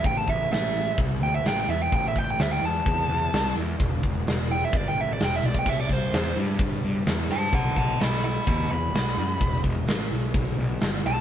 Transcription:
<<
  \new Staff \with { instrumentName = "Lead electric guitar" } { \time 4/4 \key e \minor \tempo 4 = 128 g''16 a''16 e''8 e''4 r8 g''16 e''16 g''16 g''16 e''16 g''16 | g''16 e''16 g''16 g''16 e''16 g''16 a''2 r8 | r4. g''16 e''16 d''16 g''16 e''16 d''16 g''16 e''16 d''16 g''16 | e''16 d''16 c''4 r2 <c'' a''>8 |
<fis'' a''>8 <fis'' a''>8 <dis'' b''>8 <dis'' b''>8 <dis'' b''>8 b''4.~ | b''8 r2. a''8 | }
  \new Staff \with { instrumentName = "Picked electric bass" } { \clef bass \time 4/4 \key e \minor a,,8 a,,8 a,,4 c,8 d,8 a,,8 e,8 | a,,8 a,,8 d,8 e,8 e,8 e,8 c,8 e,8 | e,,8 e,,8 e,,4 g,,8 a,,8 e,,8 b,,8 | c,8 c,8 e,8 g,8 g,8 g,8 e,8 g,8 |
b,,8 b,,8 b,,4 dis,8 e,8 b,,8 fis,8 | e,,8 e,,8 a,,8 b,,8 b,,8 b,,8 g,,8 b,,8 | }
  \new DrumStaff \with { instrumentName = "Drums" } \drummode { \time 4/4 <hho bd>8 bd8 <hho sn>4 <hho bd>4 <hho sn>4 | <hho bd>8 bd8 <hho sn>4 <hho bd>4 <hho sn>4 | <hho bd>8 bd8 <hho sn>4 <hho bd>4 <hho sn>8 tommh16 bd16 | <cymc hho bd>8 bd8 <hho sn>4 <hho bd>4 <hho sn>4 |
<hho bd>8 bd8 <hho sn>4 <hho bd>4 <hho sn>4 | <hho bd>8 bd8 <hho sn>4 <hho bd>4 <hho sn>4 | }
>>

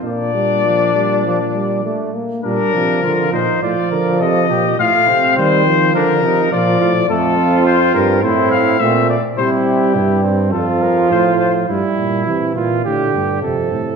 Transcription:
<<
  \new Staff \with { instrumentName = "Trumpet" } { \time 4/4 \key bes \major \tempo 4 = 103 d''2.~ d''8 r8 | bes'4. c''8 d''4 ees''4 | f''4 c''4 bes'4 d''4 | a'4 c''8 bes'8 c''8 f''8 e''8 d''8 |
c''8 g'4 r8 a'8 bes'8 c''8 c''8 | r1 | }
  \new Staff \with { instrumentName = "Flugelhorn" } { \time 4/4 \key bes \major d'2.~ d'8 r8 | d'4 f'8 ees'8 f'8 bes'8 a'8 g'8 | f'8 c'4. d'8 ees'8 f'8 f'8 | f'2 e'4 c'8 r8 |
e'4 e'8 c'8 f'2 | e'4. f'8 g'4 a'4 | }
  \new Staff \with { instrumentName = "Trombone" } { \clef bass \time 4/4 \key bes \major bes8 g8 f8 g8 f8 g8 a8 bes8 | g8 f4. f2 | a4 g8 f4. f4 | a8 c'4. c'4 a8 r8 |
g2 f2 | g4 e4 d4 c4 | }
  \new Staff \with { instrumentName = "Bass trombone" } { \clef bass \time 4/4 \key bes \major bes,2.~ bes,8 r8 | bes,8 c8 d8 bes,8 a,8 d8 c8 bes,8 | a,8 c8 ees4 d8 c8 bes,8 a,8 | f,4. g,8 a,4 bes,8 r8 |
c4 g,4 f,4 a,4 | g,8 bes,8 c8 bes,8 a,8 g,8 f,8 a,8 | }
>>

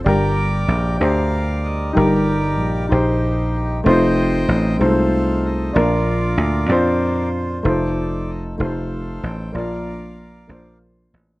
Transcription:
<<
  \new Staff \with { instrumentName = "Accordion" } { \time 6/8 \key bes \major \tempo 4. = 63 << { g''4. f''4 ees''8 | d''4. c''4 r8 | g''4. f''4 ees''8 | d''4. c''4. |
d''4 ees''8 f''4 g''8 | f''2 r4 | } \\ { <bes' d''>4. <bes' d''>4. | <g' bes'>4. <ees' g'>4. | <c'' ees''>4. <a' c''>4. | <f' bes'>4. f'4. |
a'4. <a' c''>4. | <bes' d''>2 r4 | } >> }
  \new Staff \with { instrumentName = "Grand piano" } { \time 6/8 \key bes \major <g, d' g' bes'>4. <d' g' c''>4. | <g, ees' g' bes'>4. <ees' g' c''>4. | <a c' ees' f' c''>4. <aes a c' ees' f' c''>4. | <bes, d' f' bes'>4. <d' f' c''>4. |
<a ees' f' c''>4. <a ees' f' c''>4. | <bes, bes d' f' d''>4. <bes d' f' c''>4. | }
  \new Staff \with { instrumentName = "Slap bass" } { \clef bass \time 6/8 \key bes \major g,,4 bes,,8 d,4. | g,,4 bes,,8 bes,,4. | f,,4 a,,8 c,4. | bes,,4 d,8 f,4. |
f,,4. f,,4 a,,8 | bes,,4. bes,,4 a,,8 | }
>>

